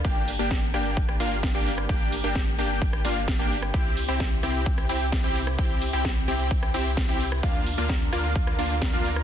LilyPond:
<<
  \new Staff \with { instrumentName = "Digital synth lead" } { \time 4/4 \key c \mixolydian \tempo 4 = 130 g''8 r16 g''16 r8 g''4 f''16 r8 g''16 r8 | g''8 r16 g''16 r8 g''4 f''16 r8 g''16 r8 | g''8 r16 g''16 r8 g''4 g''16 r8 g''16 r8 | g''8 r16 g''16 r8 g''4 g''16 r8 g''16 r8 |
f''8 r16 f''16 r8 f''4 f''16 r8 f''16 r8 | }
  \new Staff \with { instrumentName = "Analog synth pad" } { \time 4/4 \key c \mixolydian << { g'1~ | g'1~ | g'1~ | g'1 |
bes'1 | } \\ { <bes d'>1~ | <bes d'>1 | <c c' e'>1~ | <c c' e'>1 |
<d d' f'>1 | } >> }
  \new Staff \with { instrumentName = "Supersaw synth" } { \time 4/4 \key c \mixolydian <bes d' g'>8 r16 <bes d' g'>16 r8 <bes d' g'>4 <bes d' f'>16 r8 <bes d' g'>16 r8 | <bes d' g'>8 r16 <bes d' g'>16 r8 <bes d' g'>4 <bes d' f'>16 r8 <bes d' g'>16 r8 | <c' e' g'>8 r16 <c' e' g'>16 r8 <c' e' g'>4 <c' e' g'>16 r8 <c' e' g'>16 r8 | <c' e' g'>8 r16 <c' e' g'>16 r8 <c' e' g'>4 <c' e' g'>16 r8 <c' e' g'>16 r8 |
<bes d' f'>8 r16 <bes d' f'>16 r8 <bes d' f'>4 <bes d' f'>16 r8 <bes d' f'>16 r8 | }
  \new Staff \with { instrumentName = "Sub bass" } { \clef bass \time 4/4 \key c \mixolydian g,,8. g,,8. g,,4 g,,8. g,,8. | g,,8. g,,8. g,,4 g,,8. g,,8. | c,8. c,8. c,4 c,8. c,8. | c,8. c,8. c,4 c,8. c,8. |
d,8. d,8. d,4 d,8. d,8. | }
  \new DrumStaff \with { instrumentName = "Drums" } \drummode { \time 4/4 <hh bd>8 hho16 hh16 <hh bd sn>8 <hho ss>16 hh16 <hh bd>16 <hh ss>16 hho16 hh16 <hh bd sn>16 hh16 hho16 <hh ss>16 | <hh bd>16 hh16 hho8 <hh bd sn>8 hho16 hh16 <hh bd>16 <hh ss>16 hho16 hh16 <hh bd sn>16 hh16 hho16 <hh ss>16 | <hh bd>8 <hho cymr>16 hh16 <hh bd sn>8 <hho cymr ss>16 hh16 <hh bd>16 <hh ss>16 <hho cymr>16 hh16 <hh bd sn>16 hh16 <hho cymr>16 <hh ss>16 | <hh bd>8 <hho cymr>16 hh16 <hh bd sn>8 <hho cymr>16 hh16 <hh bd>16 <hh ss>16 <hho cymr>16 hh16 <hh bd sn>16 hh16 <hho cymr>16 <hh ss>16 |
<hh bd>8 <hho cymr>16 hh16 <hh bd sn>8 <hho cymr ss>16 hh16 <hh bd>16 <hh ss>16 <hho cymr>16 hh16 <hh bd sn>16 hh16 <hho cymr>16 <hh ss>16 | }
>>